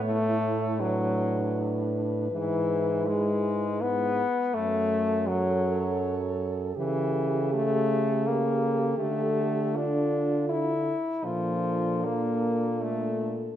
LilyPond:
<<
  \new Staff \with { instrumentName = "French horn" } { \time 3/4 \key fis \minor \tempo 4 = 80 cis''4 b'2~ | b'2~ b'8 r8 | cis''2. | \key d \minor a'2.~ |
a'2~ a'8 r8 | a'2. | }
  \new Staff \with { instrumentName = "French horn" } { \time 3/4 \key fis \minor e'4 d'2 | e'2~ e'8 r8 | a'2. | \key d \minor g'2.~ |
g'4 f'4. r8 | d'2. | }
  \new Staff \with { instrumentName = "French horn" } { \time 3/4 \key fis \minor a4 fis4. r8 | e4 gis4 b4 | a4 fis4. r8 | \key d \minor e4 a4 bes4 |
a4 d'4 e'4 | f4 bes4 a8 r8 | }
  \new Staff \with { instrumentName = "French horn" } { \clef bass \time 3/4 \key fis \minor a,2. | gis,2~ gis,8 r8 | fis,2. | \key d \minor cis2. |
d2~ d8 r8 | bes,2. | }
>>